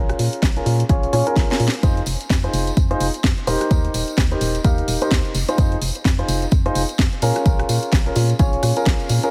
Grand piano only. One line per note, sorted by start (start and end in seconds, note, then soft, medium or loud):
0.00 0.53 C#4 medium
0.00 0.53 F4 medium
0.00 0.53 G#4 medium
0.00 0.53 A#4 medium
0.56 0.81 C#4 medium
0.56 0.81 F4 medium
0.56 0.81 G#4 medium
0.56 0.81 A#4 medium
0.89 1.11 C#4 medium
0.89 1.11 F4 medium
0.89 1.11 G#4 medium
0.89 1.11 C#5 loud
1.13 1.25 C#4 loud
1.13 1.25 F4 medium
1.13 1.25 G#4 medium
1.13 1.25 C#5 loud
1.27 1.47 C#4 loud
1.27 1.47 F4 medium
1.27 1.47 G#4 medium
1.27 1.47 A#4 loud
1.50 1.64 C#4 medium
1.50 1.64 F4 medium
1.50 1.64 G#4 medium
1.50 1.64 A#4 medium
1.83 1.99 D#4 medium
1.83 1.99 F4 medium
1.83 1.99 G#4 medium
1.83 1.99 C5 loud
2.44 2.69 D#4 medium
2.44 2.69 F4 medium
2.44 2.69 G#4 medium
2.44 2.69 C5 medium
2.91 3.05 D#4 loud
2.91 3.05 F4 medium
2.91 3.05 G#4 medium
2.91 3.05 C5 loud
3.47 3.68 D#4 medium
3.47 3.68 G4 medium
3.47 3.68 A#4 medium
3.47 3.68 C5 loud
3.71 4.28 G4 medium
3.71 4.28 A#4 medium
3.71 4.28 C5 medium
4.32 4.56 D#4 medium
4.32 4.56 G4 medium
4.32 4.56 A#4 medium
4.32 4.56 C5 medium
4.64 4.98 D#4 medium
4.64 4.98 G4 medium
4.64 4.98 A#4 medium
4.64 4.98 F5 loud
5.02 5.34 D#4 medium
5.02 5.34 G4 medium
5.02 5.34 A#4 medium
5.02 5.34 C5 medium
5.49 5.57 D#4 medium
5.49 5.57 F4 medium
5.49 5.57 G#4 medium
5.49 5.57 C5 medium
5.58 5.74 D#4 medium
5.58 5.74 F4 medium
5.58 5.74 G#4 medium
5.58 5.74 C5 loud
6.19 6.44 D#4 medium
6.19 6.44 F4 medium
6.19 6.44 G#4 medium
6.19 6.44 C5 medium
6.66 6.80 D#4 loud
6.66 6.80 F4 medium
6.66 6.80 G#4 medium
6.66 6.80 C5 loud
7.22 7.43 C#4 loud
7.22 7.43 F4 medium
7.22 7.43 G#4 medium
7.22 7.43 A#4 loud
7.46 8.03 C#4 medium
7.46 8.03 F4 medium
7.46 8.03 G#4 medium
7.46 8.03 A#4 medium
8.06 8.31 C#4 medium
8.06 8.31 F4 medium
8.06 8.31 G#4 medium
8.06 8.31 A#4 medium
8.39 8.73 C#4 medium
8.39 8.73 F4 medium
8.39 8.73 G#4 medium
8.39 8.73 C#5 loud
8.77 9.20 C#4 medium
8.77 9.20 F4 medium
8.77 9.20 G#4 medium
8.77 9.20 A#4 medium
9.23 9.31 C#4 medium
9.23 9.31 F4 medium
9.23 9.31 G#4 medium
9.23 9.31 A#4 medium